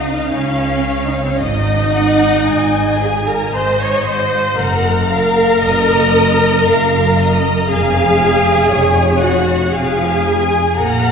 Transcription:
0.00 0.18 C#2 medium
0.00 0.18 C#3 medium
0.00 0.31 D#4 medium
0.00 0.31 D#5 medium
0.00 1.40 F5 medium
0.31 1.27 C#2 medium
0.31 1.27 C#3 medium
0.31 1.04 C#4 medium
0.31 1.38 C#5 medium
1.04 1.13 D#4 medium
1.13 1.22 C#4 medium
1.22 1.31 C4 medium
1.31 1.40 C#4 medium
1.39 2.34 G#1 medium
1.39 2.34 G#2 medium
1.39 3.01 D#4 medium
1.39 3.01 D#5 medium
1.39 1.92 D#5 medium
1.94 2.47 F#5 medium
2.47 3.41 G#1 medium
2.47 3.41 G#2 medium
2.47 3.54 G#5 medium
3.01 3.27 G#4 medium
3.01 3.28 G#5 medium
3.27 3.54 A#4 medium
3.27 3.54 A#5 medium
3.53 4.45 G#1 medium
3.53 4.45 G#2 medium
3.53 3.80 C5 medium
3.53 4.57 D#5 medium
3.53 3.80 C6 medium
3.80 4.06 C#5 medium
3.80 4.05 C#6 medium
4.07 4.57 C5 medium
4.07 4.58 C6 medium
4.57 5.51 F#1 medium
4.57 5.51 F#2 medium
4.57 7.70 A#4 loud
4.57 5.09 F#5 medium
4.57 7.71 A#5 medium
5.10 5.63 F5 medium
5.63 6.54 F#1 medium
5.63 6.54 F#2 medium
5.63 6.66 D#5 medium
6.66 7.57 F#1 medium
6.66 7.57 F#2 medium
6.66 7.17 F5 medium
7.17 7.69 D#5 medium
7.69 8.59 F1 medium
7.69 8.59 F2 medium
7.69 9.19 G#4 loud
7.69 8.69 F5 medium
7.69 9.19 G#5 medium
8.71 9.60 F1 medium
8.71 9.60 F2 medium
8.71 9.73 C#5 medium
9.20 9.72 F#4 medium
9.20 9.72 F#5 medium
9.73 10.64 F1 medium
9.73 10.64 F2 medium
9.73 10.77 G#4 medium
9.73 10.24 F5 medium
9.73 10.76 G#5 medium
10.23 10.76 G#5 medium
10.75 11.12 A#1 medium
10.75 11.12 A#2 medium
10.75 11.12 A#4 loud
10.75 11.12 F#5 medium
10.75 11.12 A#5 medium

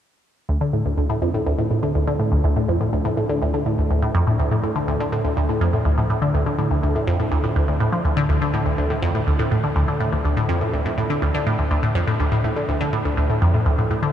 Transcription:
0.49 0.56 D2 medium
0.61 0.68 D3 medium
0.73 0.83 A2 medium
0.85 0.90 D2 medium
0.98 1.08 D2 medium
1.10 1.17 A2 medium
1.22 1.29 F2 medium
1.34 1.38 A2 medium
1.47 1.53 D2 medium
1.59 1.63 A2 medium
1.71 1.75 A2 medium
1.83 1.93 D3 medium
1.95 2.02 D2 medium
2.08 2.14 D3 medium
2.20 2.30 A2 medium
2.32 2.36 D2 medium
2.44 2.54 D2 medium
2.56 2.63 A2 medium
2.68 2.75 F2 medium
2.81 2.85 A2 medium
2.93 3.00 D2 medium
3.05 3.09 A2 medium
3.17 3.21 A2 medium
3.29 3.40 D3 medium
3.42 3.48 D2 medium
3.54 3.61 D3 medium
3.66 3.76 A2 medium
3.78 3.82 D2 medium
3.90 4.01 D2 medium
4.02 4.09 A2 medium
4.14 4.21 F2 loud
4.27 4.31 A2 medium
4.39 4.46 D2 medium
4.51 4.55 A2 medium
4.63 4.68 A2 medium
4.76 4.86 D3 medium
4.88 4.95 D2 medium
5.00 5.07 D3 medium
5.12 5.22 A2 medium
5.24 5.29 D2 medium
5.37 5.47 D2 medium
5.49 5.56 A2 medium
5.61 5.68 F2 loud
5.73 5.77 A2 medium
5.85 5.92 D2 medium
5.98 6.02 A2 medium
6.10 6.14 A2 medium
6.22 6.32 D3 medium
6.34 6.41 D2 medium
6.46 6.53 D3 medium
6.59 6.69 A2 medium
6.71 6.75 D2 medium
6.83 6.93 D2 medium
6.95 7.02 A2 medium
7.07 7.14 F2 medium
7.20 7.24 A2 medium
7.32 7.39 D2 medium
7.44 7.48 A2 medium
7.56 7.63 D2 medium
7.68 7.75 D2 medium
7.80 7.87 A2 medium
7.93 8.00 F3 medium
8.05 8.09 D2 medium
8.17 8.21 D3 loud
8.29 8.36 D2 medium
8.42 8.48 D3 medium
8.54 8.64 A2 medium
8.66 8.70 D2 medium
8.78 8.88 D2 medium
8.90 8.97 A2 medium
9.02 9.09 F2 loud
9.15 9.19 A2 medium
9.27 9.34 D2 medium
9.39 9.43 A2 medium
9.51 9.55 A2 medium
9.64 9.74 D3 medium
9.76 9.83 D2 medium
9.88 9.95 D3 medium
10.00 10.10 A2 medium
10.12 10.17 D2 medium
10.25 10.35 D2 medium
10.37 10.44 A2 medium
10.49 10.56 F2 medium
10.61 10.65 A2 medium
10.73 10.80 D2 medium
10.85 10.90 A2 medium
10.98 11.02 A2 medium
11.10 11.20 D3 medium
11.22 11.29 D2 medium
11.34 11.41 D3 medium
11.47 11.57 A2 medium
11.59 11.63 D2 medium
11.71 11.81 D2 medium
11.83 11.90 A2 medium
11.95 12.02 F2 loud
12.07 12.12 A2 medium
12.20 12.27 D2 medium
12.32 12.36 A2 medium
12.44 12.48 A2 medium
12.57 12.67 D3 medium
12.69 12.75 D2 medium
12.81 12.87 D3 medium
12.93 13.03 A2 medium
13.05 13.09 D2 medium
13.17 13.27 D2 medium
13.30 13.36 A2 medium
13.42 13.48 F2 loud
13.54 13.58 A2 medium
13.66 13.73 D2 medium
13.78 13.82 A2 medium
13.91 13.95 A2 medium
14.03 14.12 D3 medium

